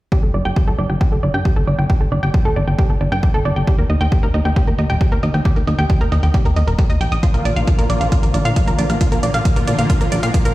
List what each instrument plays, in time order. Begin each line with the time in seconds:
0.12 synth arpeggio sound G4, kick
0.23 analog synth bass G1, synth arpeggio sound A4, closed hi-hat
0.34 analog synth bass G1, synth arpeggio sound D5, closed hi-hat
0.45 analog synth bass G1, synth arpeggio sound G5
0.56 synth arpeggio sound G4, kick
0.68 analog synth bass G1, synth arpeggio sound A4
0.79 analog synth bass G1, synth arpeggio sound D5, closed hi-hat
0.90 analog synth bass G1, synth arpeggio sound G5, closed hi-hat
1.01 synth arpeggio sound G4, kick
1.12 analog synth bass G1, synth arpeggio sound A4, closed hi-hat
1.23 analog synth bass G1, synth arpeggio sound D5, closed hi-hat
1.34 analog synth bass G2, synth arpeggio sound G5, closed hi-hat
1.45 synth arpeggio sound G4, kick, closed hi-hat
1.56 analog synth bass G1, synth arpeggio sound A4, closed hi-hat
1.67 analog synth bass G1, synth arpeggio sound D5, closed hi-hat
1.79 analog synth bass G1, synth arpeggio sound G5, closed hi-hat
1.90 synth arpeggio sound G4, kick
2.01 analog synth bass G1, synth arpeggio sound A4, closed hi-hat
2.12 analog synth bass G1, synth arpeggio sound D5, closed hi-hat
2.23 analog synth bass G1, synth arpeggio sound G5, closed hi-hat
2.34 synth arpeggio sound G4, kick, closed hi-hat
2.45 analog synth bass G1, synth arpeggio sound A4, closed hi-hat
2.56 analog synth bass G1, synth arpeggio sound D5, closed hi-hat
2.67 analog synth bass G1, synth arpeggio sound G5, closed hi-hat
2.79 synth arpeggio sound G4, kick, closed hi-hat
2.90 analog synth bass G1, synth arpeggio sound A4, closed hi-hat
3.01 analog synth bass G1, synth arpeggio sound D5, closed hi-hat
3.12 analog synth bass G2, synth arpeggio sound G5, closed hi-hat
3.23 synth arpeggio sound G4, kick, closed hi-hat
3.34 analog synth bass G1, synth arpeggio sound A4, closed hi-hat
3.45 analog synth bass G1, synth arpeggio sound D5, closed hi-hat
3.56 analog synth bass G1, synth arpeggio sound G5, closed hi-hat
3.67 synth arpeggio sound G4, kick, closed hi-hat
3.79 analog synth bass D#2, synth arpeggio sound A#4, closed hi-hat
3.90 analog synth bass D#2, synth arpeggio sound D#5, closed hi-hat
4.01 analog synth bass D#2, synth arpeggio sound G5, closed hi-hat
4.12 synth arpeggio sound G4, kick, closed hi-hat
4.23 analog synth bass D#2, synth arpeggio sound A#4, closed hi-hat
4.34 analog synth bass D#2, synth arpeggio sound D#5, closed hi-hat
4.45 analog synth bass D#2, synth arpeggio sound G5, closed hi-hat
4.56 synth arpeggio sound G4, kick, closed hi-hat
4.67 analog synth bass D#2, synth arpeggio sound A#4, closed hi-hat
4.78 analog synth bass D#2, synth arpeggio sound D#5, closed hi-hat
4.90 analog synth bass D#1, synth arpeggio sound G5, closed hi-hat
5.01 synth arpeggio sound G4, kick, closed hi-hat
5.12 analog synth bass D#2, synth arpeggio sound A#4, closed hi-hat
5.23 analog synth bass D#2, synth arpeggio sound D#5, closed hi-hat
5.34 analog synth bass D#2, synth arpeggio sound G5, closed hi-hat
5.45 synth arpeggio sound G4, kick, closed hi-hat
5.56 analog synth bass D#2, synth arpeggio sound A#4, closed hi-hat
5.67 analog synth bass D#2, synth arpeggio sound D#5, closed hi-hat
5.78 analog synth bass D#2, synth arpeggio sound G5, closed hi-hat
5.90 synth arpeggio sound G4, kick, closed hi-hat
6.01 analog synth bass D#2, synth arpeggio sound A#4, closed hi-hat
6.12 analog synth bass D#2, synth arpeggio sound D#5, closed hi-hat
6.23 analog synth bass D#2, synth arpeggio sound G5, closed hi-hat
6.34 synth arpeggio sound G4, kick, closed hi-hat
6.45 analog synth bass D#2, synth arpeggio sound A#4, closed hi-hat
6.56 analog synth bass D#2, synth arpeggio sound D#5, closed hi-hat
6.67 analog synth bass D#1, synth arpeggio sound A#4, closed hi-hat
6.79 synth arpeggio sound G4, kick, closed hi-hat
6.90 analog synth bass D#2, synth arpeggio sound D#5, closed hi-hat
7.01 analog synth bass A#1, synth arpeggio sound G5, closed hi-hat
7.12 analog synth bass A#1, synth arpeggio sound D#6, closed hi-hat
7.23 analog synth pad D3 F3 A#3 F4, synth arpeggio sound F4, kick, closed hi-hat
7.34 analog synth bass A#1, synth arpeggio sound A#4, closed hi-hat
7.45 analog synth bass A#1, synth arpeggio sound D5, closed hi-hat
7.56 analog synth bass A#1, analog synth pad D3 F3 A#3 F4, synth arpeggio sound F5, closed hi-hat
7.67 analog synth pad D3 F3 A#3 F4, synth arpeggio sound F4, kick, closed hi-hat
7.79 analog synth bass A#1, synth arpeggio sound A#4, closed hi-hat
7.90 analog synth bass A#1, analog synth pad D3 F3 A#3 F4, synth arpeggio sound D5, closed hi-hat
8.01 analog synth bass A#1, synth arpeggio sound F5, closed hi-hat
8.12 analog synth pad D3 F3 A#3 F4, synth arpeggio sound F4, kick, closed hi-hat
8.23 analog synth bass A#1, synth arpeggio sound A#4, closed hi-hat
8.34 analog synth bass A#1, synth arpeggio sound D5, closed hi-hat
8.45 analog synth bass A#2, analog synth pad D3 F3 A#3 F4, synth arpeggio sound F5, closed hi-hat
8.56 analog synth pad D3 F3 A#3 F4, synth arpeggio sound F4, kick, closed hi-hat
8.67 analog synth bass A#1, analog synth pad D3 F3 A#3 F4, synth arpeggio sound A#4, closed hi-hat
8.78 analog synth bass A#1, synth arpeggio sound D5, closed hi-hat
8.90 analog synth bass A#1, synth arpeggio sound F5, closed hi-hat
9.01 analog synth pad D3 F3 A#3 F4, synth arpeggio sound F4, kick, closed hi-hat
9.12 analog synth bass A#1, synth arpeggio sound A#4, closed hi-hat
9.23 analog synth bass A#1, synth arpeggio sound D5, closed hi-hat
9.34 analog synth bass A#1, analog synth pad D3 F3 A#3 F4, synth arpeggio sound F5, closed hi-hat
9.45 analog synth pad D3 F3 A#3 F4, synth arpeggio sound F4, kick, closed hi-hat
9.56 analog synth bass A#1, synth arpeggio sound A#4, closed hi-hat
9.67 analog synth bass A#1, analog synth pad D3 F3 A#3 F4, synth arpeggio sound D5, closed hi-hat
9.79 analog synth bass A#1, synth arpeggio sound F5, closed hi-hat
9.89 analog synth pad D3 F3 A#3 F4, synth arpeggio sound F4, kick, closed hi-hat
10.01 analog synth bass A#1, synth arpeggio sound A#4, closed hi-hat
10.12 analog synth bass A#1, synth arpeggio sound D5, closed hi-hat
10.23 analog synth bass A#2, analog synth pad D3 F3 A#3 F4, synth arpeggio sound F5, closed hi-hat
10.34 analog synth pad D3 F3 A#3 F4, synth arpeggio sound F4, kick, closed hi-hat
10.45 analog synth bass A#1, analog synth pad D3 F3 A#3 F4, synth arpeggio sound A#4, closed hi-hat